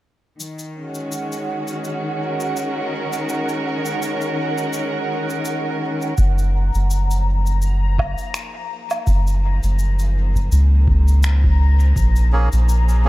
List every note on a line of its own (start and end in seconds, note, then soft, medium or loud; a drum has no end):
0.39 6.18 D#3 medium
0.39 6.20 F#5 medium
0.39 cabasa medium
0.59 cabasa soft
0.74 7.90 C#4 medium
0.81 6.18 G#3 medium
0.81 6.18 F#4 medium
0.94 cabasa soft
1.12 cabasa medium
1.32 cabasa soft
1.68 cabasa soft
1.84 cabasa medium
2.19 7.09 A#4 medium
2.40 cabasa medium
2.56 cabasa medium
3.13 cabasa medium
3.29 cabasa medium
3.49 cabasa soft
3.85 cabasa medium
4.02 cabasa medium
4.21 cabasa soft
4.58 cabasa medium
4.73 cabasa medium
5.30 cabasa soft
5.45 cabasa medium
6.02 cabasa soft
6.18 6.71 F#1 medium
6.18 13.09 F3 medium
6.18 13.09 A#5 medium
6.18 kick loud
6.18 cabasa medium
6.38 cabasa soft
6.48 13.09 A#3 medium
6.48 13.09 D#4 medium
6.75 8.15 F#1 medium
6.75 cabasa medium
6.90 cabasa medium
7.00 13.09 C5 medium
7.11 cabasa soft
7.46 cabasa medium
7.62 13.09 G#4 medium
7.62 cabasa medium
7.99 kick loud
7.99 low woodblock medium
8.18 cabasa medium
8.34 finger snap medium
8.34 cabasa medium
8.90 cabasa soft
8.90 low woodblock medium
9.07 9.60 F#1 medium
9.07 kick loud
9.07 cabasa medium
9.27 cabasa soft
9.63 10.49 F#1 medium
9.63 cabasa medium
9.79 cabasa medium
9.99 cabasa soft
10.35 kick medium
10.35 cabasa medium
10.52 11.93 C#2 loud
10.52 cabasa medium
10.88 kick loud
11.08 cabasa medium
11.23 finger snap medium
11.23 cabasa medium
11.44 kick loud
11.80 cabasa soft
11.96 12.49 A#1 medium
11.96 kick loud
11.96 cabasa medium
12.16 cabasa soft
12.33 12.49 A#3 medium
12.33 12.49 C#4 medium
12.33 12.49 G#4 medium
12.53 13.09 A#1 medium
12.53 cabasa medium
12.69 cabasa medium
12.89 cabasa soft
13.05 13.09 A#3 loud
13.05 13.09 C#4 medium
13.05 13.09 G#4 loud